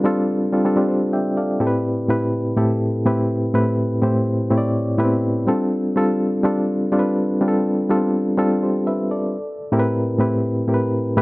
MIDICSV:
0, 0, Header, 1, 2, 480
1, 0, Start_track
1, 0, Key_signature, 0, "minor"
1, 0, Tempo, 483871
1, 1597, Time_signature, 4, 2, 24, 8
1, 11129, End_track
2, 0, Start_track
2, 0, Title_t, "Reed electric piano"
2, 0, Program_c, 0, 4
2, 0, Control_c, 0, 64, 127
2, 0, Note_on_c, 0, 55, 81
2, 0, Note_on_c, 0, 60, 76
2, 0, Note_on_c, 0, 62, 75
2, 0, Note_on_c, 0, 65, 78
2, 0, Note_on_c, 0, 69, 91
2, 0, Note_on_c, 0, 71, 96
2, 0, Note_on_c, 0, 72, 92
2, 39, Note_off_c, 0, 55, 0
2, 39, Note_on_c, 0, 55, 93
2, 47, Note_off_c, 0, 60, 0
2, 47, Note_on_c, 0, 60, 88
2, 49, Note_off_c, 0, 62, 0
2, 49, Note_on_c, 0, 62, 84
2, 54, Note_off_c, 0, 65, 0
2, 54, Note_on_c, 0, 65, 89
2, 57, Note_off_c, 0, 69, 0
2, 57, Note_on_c, 0, 69, 98
2, 399, Note_off_c, 0, 55, 0
2, 403, Note_off_c, 0, 60, 0
2, 404, Note_off_c, 0, 62, 0
2, 407, Note_off_c, 0, 65, 0
2, 408, Note_off_c, 0, 69, 0
2, 518, Note_on_c, 0, 55, 70
2, 522, Note_on_c, 0, 60, 67
2, 524, Note_on_c, 0, 62, 63
2, 527, Note_on_c, 0, 65, 68
2, 533, Note_on_c, 0, 69, 78
2, 608, Note_off_c, 0, 55, 0
2, 611, Note_off_c, 0, 60, 0
2, 612, Note_off_c, 0, 62, 0
2, 613, Note_off_c, 0, 65, 0
2, 616, Note_off_c, 0, 69, 0
2, 640, Note_on_c, 0, 55, 75
2, 642, Note_on_c, 0, 60, 69
2, 645, Note_on_c, 0, 62, 69
2, 648, Note_on_c, 0, 65, 70
2, 654, Note_on_c, 0, 69, 83
2, 729, Note_off_c, 0, 55, 0
2, 730, Note_off_c, 0, 60, 0
2, 732, Note_off_c, 0, 62, 0
2, 733, Note_off_c, 0, 65, 0
2, 736, Note_off_c, 0, 69, 0
2, 751, Note_on_c, 0, 55, 67
2, 760, Note_on_c, 0, 60, 71
2, 762, Note_on_c, 0, 65, 61
2, 765, Note_on_c, 0, 62, 71
2, 771, Note_on_c, 0, 67, 80
2, 879, Note_off_c, 0, 72, 0
2, 879, Note_on_c, 0, 72, 72
2, 1101, Note_off_c, 0, 72, 0
2, 1122, Note_on_c, 0, 76, 66
2, 1123, Note_on_c, 0, 79, 60
2, 1127, Note_on_c, 0, 74, 57
2, 1343, Note_off_c, 0, 76, 0
2, 1348, Note_off_c, 0, 79, 0
2, 1350, Note_off_c, 0, 74, 0
2, 1360, Note_on_c, 0, 74, 55
2, 1363, Note_on_c, 0, 77, 58
2, 1367, Note_on_c, 0, 69, 54
2, 1384, Note_off_c, 0, 55, 0
2, 1388, Note_off_c, 0, 60, 0
2, 1389, Note_off_c, 0, 65, 0
2, 1391, Note_off_c, 0, 62, 0
2, 1394, Note_off_c, 0, 67, 0
2, 1583, Note_off_c, 0, 77, 0
2, 1585, Note_off_c, 0, 69, 0
2, 1586, Note_on_c, 0, 45, 87
2, 1589, Note_on_c, 0, 60, 82
2, 1589, Note_on_c, 0, 64, 78
2, 1597, Note_on_c, 0, 69, 72
2, 1598, Note_on_c, 0, 67, 82
2, 1609, Control_c, 0, 64, 0
2, 1613, Note_off_c, 0, 71, 0
2, 1654, Note_off_c, 0, 69, 0
2, 1656, Note_on_c, 0, 71, 100
2, 1814, Note_off_c, 0, 74, 0
2, 1814, Control_c, 0, 64, 127
2, 1951, Note_off_c, 0, 45, 0
2, 1952, Note_off_c, 0, 60, 0
2, 1952, Note_off_c, 0, 64, 0
2, 1957, Note_off_c, 0, 67, 0
2, 1986, Note_off_c, 0, 71, 0
2, 2067, Note_on_c, 0, 45, 77
2, 2071, Note_on_c, 0, 60, 72
2, 2078, Note_on_c, 0, 64, 73
2, 2080, Note_on_c, 0, 67, 76
2, 2086, Note_on_c, 0, 71, 93
2, 2431, Note_off_c, 0, 45, 0
2, 2433, Note_off_c, 0, 60, 0
2, 2436, Note_off_c, 0, 64, 0
2, 2438, Note_off_c, 0, 67, 0
2, 2441, Note_off_c, 0, 71, 0
2, 2543, Note_on_c, 0, 45, 94
2, 2547, Note_on_c, 0, 60, 71
2, 2550, Note_on_c, 0, 64, 73
2, 2553, Note_on_c, 0, 67, 83
2, 2555, Note_on_c, 0, 69, 93
2, 2909, Note_off_c, 0, 45, 0
2, 2911, Note_off_c, 0, 60, 0
2, 2912, Note_off_c, 0, 64, 0
2, 2914, Note_off_c, 0, 67, 0
2, 2915, Note_off_c, 0, 69, 0
2, 3028, Note_on_c, 0, 45, 94
2, 3031, Note_on_c, 0, 60, 88
2, 3039, Note_on_c, 0, 64, 87
2, 3039, Note_on_c, 0, 67, 85
2, 3042, Note_on_c, 0, 71, 100
2, 3391, Note_off_c, 0, 45, 0
2, 3393, Note_off_c, 0, 60, 0
2, 3396, Note_off_c, 0, 64, 0
2, 3397, Note_off_c, 0, 67, 0
2, 3398, Note_off_c, 0, 71, 0
2, 3508, Note_on_c, 0, 45, 91
2, 3510, Note_on_c, 0, 60, 79
2, 3515, Note_on_c, 0, 64, 72
2, 3519, Note_on_c, 0, 67, 72
2, 3522, Note_on_c, 0, 71, 94
2, 3871, Note_off_c, 0, 45, 0
2, 3872, Note_off_c, 0, 60, 0
2, 3874, Note_off_c, 0, 64, 0
2, 3876, Note_off_c, 0, 67, 0
2, 3878, Note_off_c, 0, 71, 0
2, 3987, Note_on_c, 0, 45, 88
2, 3987, Note_on_c, 0, 60, 76
2, 3997, Note_on_c, 0, 64, 72
2, 3998, Note_on_c, 0, 67, 80
2, 4002, Note_on_c, 0, 72, 88
2, 4350, Note_off_c, 0, 45, 0
2, 4350, Note_off_c, 0, 60, 0
2, 4355, Note_off_c, 0, 64, 0
2, 4356, Note_off_c, 0, 67, 0
2, 4358, Note_off_c, 0, 72, 0
2, 4465, Note_on_c, 0, 45, 92
2, 4468, Note_on_c, 0, 60, 88
2, 4475, Note_on_c, 0, 64, 84
2, 4479, Note_on_c, 0, 67, 75
2, 4483, Note_on_c, 0, 73, 81
2, 4536, Note_off_c, 0, 73, 0
2, 4539, Note_on_c, 0, 74, 93
2, 4829, Note_off_c, 0, 45, 0
2, 4830, Note_off_c, 0, 60, 0
2, 4834, Note_off_c, 0, 64, 0
2, 4836, Note_off_c, 0, 67, 0
2, 4866, Note_off_c, 0, 74, 0
2, 4940, Note_on_c, 0, 45, 93
2, 4942, Note_on_c, 0, 59, 69
2, 4945, Note_on_c, 0, 64, 85
2, 4951, Note_on_c, 0, 67, 91
2, 4958, Note_on_c, 0, 71, 104
2, 5002, Note_on_c, 0, 60, 89
2, 5005, Note_off_c, 0, 59, 0
2, 5307, Note_off_c, 0, 45, 0
2, 5309, Note_off_c, 0, 64, 0
2, 5312, Note_off_c, 0, 67, 0
2, 5316, Note_off_c, 0, 71, 0
2, 5338, Note_off_c, 0, 60, 0
2, 5424, Note_on_c, 0, 55, 96
2, 5432, Note_on_c, 0, 60, 85
2, 5435, Note_on_c, 0, 62, 85
2, 5440, Note_on_c, 0, 65, 83
2, 5441, Note_on_c, 0, 69, 98
2, 5444, Control_c, 0, 64, 0
2, 5640, Control_c, 0, 64, 127
2, 5789, Note_off_c, 0, 55, 0
2, 5793, Note_off_c, 0, 60, 0
2, 5794, Note_off_c, 0, 62, 0
2, 5797, Note_off_c, 0, 65, 0
2, 5797, Note_off_c, 0, 69, 0
2, 5910, Note_on_c, 0, 55, 86
2, 5912, Note_on_c, 0, 60, 75
2, 5914, Note_on_c, 0, 62, 75
2, 5920, Note_on_c, 0, 65, 82
2, 5926, Note_on_c, 0, 69, 104
2, 6272, Note_off_c, 0, 55, 0
2, 6273, Note_off_c, 0, 60, 0
2, 6274, Note_off_c, 0, 62, 0
2, 6277, Note_off_c, 0, 65, 0
2, 6280, Note_off_c, 0, 69, 0
2, 6384, Note_on_c, 0, 55, 90
2, 6391, Note_on_c, 0, 60, 88
2, 6391, Note_on_c, 0, 62, 87
2, 6396, Note_on_c, 0, 65, 84
2, 6401, Note_on_c, 0, 69, 90
2, 6749, Note_off_c, 0, 55, 0
2, 6753, Note_off_c, 0, 60, 0
2, 6753, Note_off_c, 0, 62, 0
2, 6755, Note_off_c, 0, 65, 0
2, 6758, Note_off_c, 0, 69, 0
2, 6861, Note_on_c, 0, 55, 94
2, 6865, Note_on_c, 0, 60, 87
2, 6870, Note_on_c, 0, 62, 93
2, 6870, Note_on_c, 0, 65, 88
2, 6876, Note_on_c, 0, 69, 86
2, 6932, Note_off_c, 0, 69, 0
2, 6935, Note_on_c, 0, 71, 103
2, 7228, Note_off_c, 0, 55, 0
2, 7230, Note_off_c, 0, 60, 0
2, 7232, Note_off_c, 0, 65, 0
2, 7233, Note_off_c, 0, 62, 0
2, 7265, Note_off_c, 0, 71, 0
2, 7348, Note_on_c, 0, 55, 85
2, 7350, Note_on_c, 0, 60, 75
2, 7357, Note_on_c, 0, 62, 81
2, 7362, Note_on_c, 0, 65, 80
2, 7367, Note_on_c, 0, 67, 74
2, 7418, Note_off_c, 0, 67, 0
2, 7421, Note_on_c, 0, 69, 94
2, 7712, Note_off_c, 0, 55, 0
2, 7713, Note_off_c, 0, 60, 0
2, 7717, Note_off_c, 0, 62, 0
2, 7719, Note_off_c, 0, 65, 0
2, 7748, Note_off_c, 0, 69, 0
2, 7832, Note_on_c, 0, 55, 87
2, 7836, Note_on_c, 0, 59, 58
2, 7837, Note_on_c, 0, 62, 73
2, 7841, Note_on_c, 0, 65, 77
2, 7845, Note_on_c, 0, 69, 98
2, 7893, Note_off_c, 0, 59, 0
2, 7894, Note_on_c, 0, 60, 76
2, 8195, Note_off_c, 0, 55, 0
2, 8197, Note_off_c, 0, 62, 0
2, 8199, Note_off_c, 0, 65, 0
2, 8201, Note_off_c, 0, 69, 0
2, 8225, Note_off_c, 0, 60, 0
2, 8305, Note_on_c, 0, 55, 84
2, 8308, Note_on_c, 0, 60, 80
2, 8310, Note_on_c, 0, 62, 77
2, 8315, Note_on_c, 0, 65, 82
2, 8321, Note_on_c, 0, 69, 105
2, 8559, Note_off_c, 0, 69, 0
2, 8561, Note_on_c, 0, 72, 71
2, 8563, Note_on_c, 0, 67, 65
2, 8671, Note_off_c, 0, 55, 0
2, 8673, Note_off_c, 0, 60, 0
2, 8674, Note_off_c, 0, 62, 0
2, 8676, Note_off_c, 0, 65, 0
2, 8787, Note_off_c, 0, 72, 0
2, 8788, Note_off_c, 0, 67, 0
2, 8799, Note_on_c, 0, 76, 70
2, 8804, Note_on_c, 0, 71, 64
2, 9026, Note_off_c, 0, 76, 0
2, 9029, Note_off_c, 0, 71, 0
2, 9039, Note_on_c, 0, 74, 66
2, 9040, Note_on_c, 0, 69, 52
2, 9292, Control_c, 0, 64, 0
2, 9477, Control_c, 0, 64, 127
2, 9495, Note_off_c, 0, 69, 0
2, 9495, Note_off_c, 0, 74, 0
2, 9642, Note_on_c, 0, 45, 115
2, 9647, Note_on_c, 0, 60, 105
2, 9647, Note_on_c, 0, 64, 101
2, 9650, Note_on_c, 0, 67, 97
2, 9653, Note_on_c, 0, 70, 90
2, 9703, Note_off_c, 0, 70, 0
2, 9716, Note_on_c, 0, 71, 113
2, 10000, Note_off_c, 0, 45, 0
2, 10003, Note_off_c, 0, 60, 0
2, 10003, Note_off_c, 0, 64, 0
2, 10005, Note_off_c, 0, 67, 0
2, 10038, Note_off_c, 0, 71, 0
2, 10106, Note_on_c, 0, 45, 84
2, 10112, Note_on_c, 0, 60, 84
2, 10116, Note_on_c, 0, 64, 79
2, 10119, Note_on_c, 0, 67, 75
2, 10123, Note_on_c, 0, 71, 89
2, 10473, Note_off_c, 0, 45, 0
2, 10476, Note_off_c, 0, 60, 0
2, 10478, Note_off_c, 0, 64, 0
2, 10480, Note_off_c, 0, 67, 0
2, 10481, Note_off_c, 0, 71, 0
2, 10589, Note_on_c, 0, 45, 68
2, 10592, Note_on_c, 0, 60, 71
2, 10594, Note_on_c, 0, 64, 67
2, 10600, Note_on_c, 0, 67, 74
2, 10603, Note_on_c, 0, 70, 65
2, 10655, Note_on_c, 0, 71, 87
2, 10659, Note_off_c, 0, 70, 0
2, 10955, Note_off_c, 0, 45, 0
2, 10956, Note_off_c, 0, 60, 0
2, 10957, Note_off_c, 0, 64, 0
2, 10960, Note_off_c, 0, 67, 0
2, 10987, Note_off_c, 0, 71, 0
2, 11075, Note_on_c, 0, 45, 103
2, 11080, Note_on_c, 0, 59, 77
2, 11083, Note_on_c, 0, 64, 99
2, 11087, Note_on_c, 0, 67, 96
2, 11091, Note_on_c, 0, 71, 113
2, 11129, Note_off_c, 0, 45, 0
2, 11129, Note_off_c, 0, 59, 0
2, 11129, Note_off_c, 0, 64, 0
2, 11129, Note_off_c, 0, 67, 0
2, 11129, Note_off_c, 0, 71, 0
2, 11129, End_track
0, 0, End_of_file